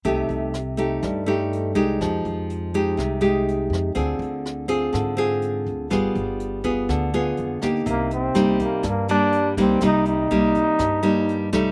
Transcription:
<<
  \new Staff \with { instrumentName = "Trombone" } { \time 4/4 \key c \minor \tempo 4 = 123 r1 | r1 | r1 | r1 |
bes8 c'4 bes8 bes8 d'4 c'8 | ees'8 ees'2. r8 | }
  \new Staff \with { instrumentName = "Nylon-string guitar" } { \time 4/4 \key c \minor << { <a ees' g'>4 r8 <a ees' g'>4 <a ees' g'>4 <aes ees' g'>8~ | <aes ees' g'>4. <aes ees' g'>4 <aes ees' g'>4. | <c' f' aes'>4. <c' f' aes'>4 <c' f' aes'>4. | <b f' aes'>4. <b f' aes'>4 <b f' aes'>4 <bes ees' g'>8~ |
<bes ees' g'>4 <g bes ees'>4 r8 <g bes>4 <g bes ees'>8 | <g bes ees'>4 <g bes ees'>4. <g bes ees'>4 <g a ees'>8 | } \\ { c2 g,2 | f2 c2 | d2 d2 | g2 d2 |
c2 g,2 | c2 g,2 | } >> }
  \new Staff \with { instrumentName = "Upright bass" } { \clef bass \time 4/4 \key c \minor c,8 c,4. g,4. c,8 | f,8 f,4. c,4. f,8 | d,8 d,4. aes,4. d,8 | g,,8 g,,4. d,4 f,8 d,8 |
c,4 c,8 r8 g,4. c,8 | c,4 c,8 r8 g,4. c,8 | }
  \new DrumStaff \with { instrumentName = "Drums" } \drummode { \time 4/4 <hh bd>8 hh8 <hh ss>8 hh8 <hh bd ss>8 hh8 hh8 hh8 | <hh bd ss>8 hh8 hh8 hh8 <hh bd ss>8 hh8 hh8 <hh ss>8 | <hh bd>8 hh8 <hh ss>8 hh8 <hh bd ss>8 hh8 hh8 hh8 | <hh bd ss>8 hh8 hh8 <hh bd>8 <hh bd ss>8 hh8 hh8 <hh ss>8 |
<hh bd>8 hh8 <hh ss>8 <hh bd>8 <hh bd ss>8 hh8 hh8 <hh bd>8 | <hh bd ss>8 hh8 hh8 <hh bd>8 <hh bd ss>8 hh8 hh8 <hh bd ss>8 | }
>>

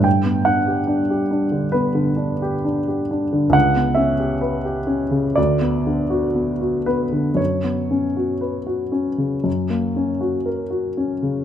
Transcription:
\new Staff \with { instrumentName = "Grand piano" } { \time 4/4 \key fis \phrygian \tempo 4 = 62 << { g''8 fis''4. b'4 r4 | fis''8 e''4. d''4. b'8 | cis''2. r4 | } \\ { g,16 b16 d'16 g'16 d'16 g'16 d'16 d16 b16 d16 d'16 g'16 d'16 g'16 d'16 d16 | cis,16 b16 cis'16 g'16 b'16 g'16 cis'16 cis16 d,16 b16 d16 fis'16 b16 fis'16 b16 d16 | fis,16 b16 cis'16 fis'16 b'16 fis'16 cis'16 cis16 fis,16 ais16 cis'16 fis'16 ais'16 fis'16 cis'16 cis16 | } >> }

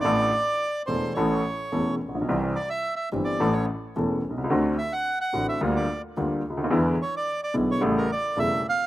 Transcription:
<<
  \new Staff \with { instrumentName = "Bandoneon" } { \time 4/4 \key a \phrygian \tempo 4 = 109 d''4. c''8 cis''4. r8 | r8 d''16 e''8 e''8 d''8 cis''8 r4 r16 | r8 e''16 fis''8 fis''8 e''8 d''8 r4 r16 | r8 cis''16 d''8 d''8 cis''8 bes'16 d''8 e''8 f''8 | }
  \new Staff \with { instrumentName = "Upright piano" } { \clef bass \time 4/4 \key a \phrygian <a,, a, e a d' a'>8 r4 <e,, e, e a d' a'>8 <a,, a, e a cis' a'>8 r8 <e,, e, e a cis' a'>8 r32 a,,32 bes,,32 b,,32 | <c, c e g c' g'>8 r4 <g,, g, e g c' g'>8 <a,, a, e a cis' a'>8 r8 <e,, e, e a cis' a'>8 r32 b,,32 c,32 cis,32 | <d, d a c' fis'>8 r4 <a,, a, d a c' fis'>8 <d, d g bes f'>8 r8 <d, d g bes f'>8 r32 cis,32 d,32 ees,32 | <e, d e gis b e'>8 r4 <b,, b, d gis b e'>8 <a,, a, cis g a e'>8 r8 <e,, e, cis g a e'>8 r8 | }
  \new Staff \with { instrumentName = "Double bass" } { \clef bass \time 4/4 \key a \phrygian a,,8 r4 e,,8 a,,8 r8 e,,8 bes,,8 | c,8 r4 g,,8 a,,8 r8 e,,8 c,8 | d,8 r4 a,,8 d,8 r8 d,8 d,8 | e,8 r4 b,,8 a,,8 r8 e,,8 r8 | }
>>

